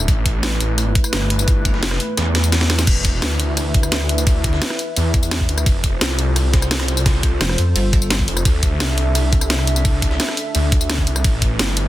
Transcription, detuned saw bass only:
0.08 0.59 A1 loud
0.61 0.94 A1 loud
1.13 1.74 G1 loud
1.74 1.99 F#1 loud
2.17 2.86 E2 loud
2.87 3.21 E1 loud
3.22 4.60 D2 loud
4.97 5.47 E2 loud
5.49 5.65 D2 loud
5.66 6.00 F1 loud
6.01 7.39 C2 loud
8.28 8.44 F1 loud
8.45 8.79 D2 loud
8.80 10.18 C2 loud
10.55 11.06 D2 loud
11.07 11.23 C2 loud
11.24 11.58 A1 loud
11.59 11.88 G1 medium

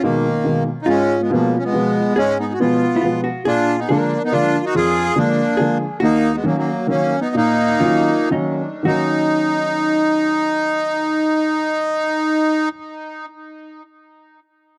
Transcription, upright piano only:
0.03 0.25 B2 medium
0.03 0.26 D#3 medium
0.03 0.26 G#3 medium
0.03 0.26 A#3 medium
0.44 0.67 B2 medium
0.44 0.67 D#3 medium
0.44 0.68 G#3 soft
0.44 0.68 A#3 medium
0.87 1.20 G#2 medium
1.30 1.53 B2 medium
1.30 1.54 F3 medium
1.30 1.54 G#3 medium
1.30 1.54 B3 medium
1.73 1.95 B2 medium
1.73 1.96 F3 medium
1.73 1.96 G#3 soft
1.73 1.97 B3 medium
2.18 2.49 G#2 medium
2.60 2.82 B2 medium
2.60 2.82 F3 medium
2.60 2.82 G#3 medium
2.60 2.83 B3 medium
3.02 3.25 B2 medium
3.02 3.25 F3 soft
3.02 3.26 G#3 soft
3.02 3.26 B3 medium
3.46 3.78 A#2 medium
3.90 4.11 D3 medium
3.90 4.12 F3 medium
3.90 4.12 G#3 medium
3.90 4.12 A#3 medium
4.32 4.54 D3 medium
4.32 4.54 F3 medium
4.32 4.54 G#3 soft
4.32 4.55 A#3 medium
4.75 5.06 F2 medium
5.16 5.38 D3 medium
5.16 5.38 F3 medium
5.16 5.39 G#3 medium
5.16 5.39 A#3 medium
5.59 5.81 D3 medium
5.59 5.82 F3 medium
5.59 5.82 G#3 soft
5.59 5.82 A#3 medium
6.02 6.34 D#2 medium
6.43 6.67 D#3 medium
6.43 6.67 F#3 medium
6.43 6.67 A#3 medium
6.43 6.68 C#4 medium
6.87 7.11 D#3 soft
6.87 7.11 F#3 medium
6.87 7.12 A#3 soft
6.87 7.12 C#4 medium
7.35 7.70 A#2 medium
7.80 8.07 D#3 medium
7.80 8.07 F#3 medium
7.80 8.07 A#3 medium
7.80 8.07 C#4 medium
8.30 8.59 D#3 medium
8.30 8.59 F#3 medium
8.30 8.60 A#3 medium
8.30 8.60 C#4 medium
8.83 12.65 D#3 medium
8.83 12.67 F#3 medium
8.88 12.70 A#3 medium
8.88 12.73 C#4 medium

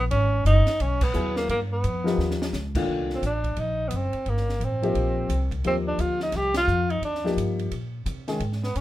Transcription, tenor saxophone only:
0.11 0.43 C#4 medium
0.46 0.83 D#4 medium
0.81 1.04 C#4 medium
1.03 1.36 B3 medium
1.37 1.49 A#3 medium
1.50 1.60 A#3 medium
1.72 2.37 B3 medium
3.15 3.24 C4 medium
3.26 3.61 D4 medium
3.59 3.89 D#4 medium
3.88 3.97 B3 medium
3.96 4.30 C4 medium
4.29 4.65 A#3 medium
4.64 5.53 C4 medium
5.67 5.76 C4 medium
5.88 6.02 D4 medium
6.01 6.21 F4 medium
6.23 6.37 D#4 medium
6.36 6.56 G4 medium
6.57 6.92 F4 loud
6.91 7.03 D#4 medium
7.05 7.36 D4 medium
8.64 8.78 B3 medium
8.76 8.81 C#4 medium

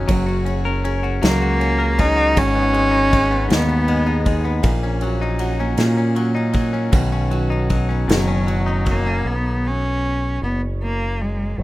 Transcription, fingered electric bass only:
0.09 1.19 F#1 medium
1.23 2.33 C#2 medium
2.37 3.47 G#1 medium
3.51 4.60 D#2 medium
4.64 5.74 A#1 medium
5.78 6.89 A#2 medium
6.93 8.05 B1 loud
8.09 9.22 F#1 medium
9.25 10.38 B1 medium
10.42 11.54 F#1 medium
11.58 11.63 F#1 medium

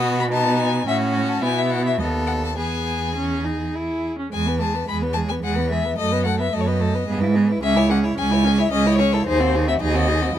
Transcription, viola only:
0.00 0.31 B3 loud
0.33 0.86 B3 loud
0.87 1.44 C#4 loud
1.43 1.99 B3 medium
2.00 2.56 B3 medium
2.57 3.09 B3 medium
3.16 3.46 C#4 medium
3.45 3.76 D#4 medium
3.75 4.18 E4 medium
4.19 4.32 C#4 medium
4.33 4.48 G#3 medium
4.47 4.63 B3 medium
4.61 4.76 G#3 medium
4.74 4.87 B3 medium
4.88 5.04 G#3 medium
5.02 5.18 B3 medium
5.16 5.33 G#3 medium
5.31 5.43 B3 medium
5.44 5.59 G#3 medium
5.58 5.72 B3 medium
5.71 5.86 G#3 medium
5.84 5.98 B3 medium
5.99 6.14 A3 medium
6.13 6.27 B3 medium
6.25 6.40 A3 medium
6.39 6.52 B3 medium
6.52 6.68 A3 medium
6.66 6.82 B3 medium
6.80 6.96 A3 medium
6.94 7.08 B3 medium
7.09 7.23 B3 medium
7.21 7.37 E4 medium
7.36 7.53 B3 medium
7.51 7.63 E4 medium
7.63 7.77 C#4 medium
7.76 7.92 E4 medium
7.91 8.06 C#4 medium
8.04 8.17 E4 medium
8.18 8.33 C#4 medium
8.31 8.46 E4 medium
8.45 8.60 C#4 medium
8.59 8.71 E4 medium
8.72 8.88 C#4 medium
8.86 9.01 E4 medium
9.00 9.15 C#4 medium
9.14 9.26 E4 medium
9.27 9.42 D#4 medium
9.40 9.57 C4 medium
9.55 9.69 D#4 medium
9.68 9.81 C4 medium
9.81 9.96 D#4 medium
9.95 10.11 C4 medium
10.09 10.24 D#4 medium
10.22 10.35 C4 medium
10.35 10.39 E4 medium

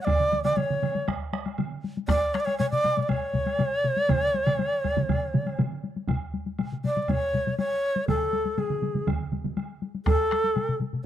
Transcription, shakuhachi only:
0.01 0.43 D5 medium
0.01 0.06 F#5 medium
0.44 0.58 D5 medium
0.57 1.07 C#5 medium
2.08 2.35 D5 loud
2.34 2.41 C#5 medium
2.40 2.46 D5 medium
2.45 2.58 C#5 medium
2.58 2.70 C#5 medium
2.71 3.02 D5 medium
3.02 3.10 D5 medium
3.09 5.60 C#5 medium
6.85 7.02 D5 medium
7.02 7.11 D5 medium
7.10 7.58 C#5 medium
7.58 8.05 C#5 medium
8.09 8.60 A4 medium
8.58 9.08 G#4 medium
10.06 10.76 A4 medium

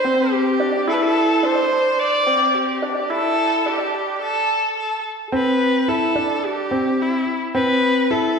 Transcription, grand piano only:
0.04 0.54 C4 medium
0.60 0.85 D4 medium
0.87 1.38 E4 loud
1.43 1.93 D4 medium
2.27 2.77 C4 medium
2.82 3.07 D4 medium
3.10 3.60 E4 loud
3.66 4.16 D4 medium
5.32 5.82 C4 medium
5.88 6.13 E4 medium
6.16 6.66 D4 medium
6.71 7.21 C4 medium
7.55 8.05 C4 medium
8.11 8.35 E4 medium

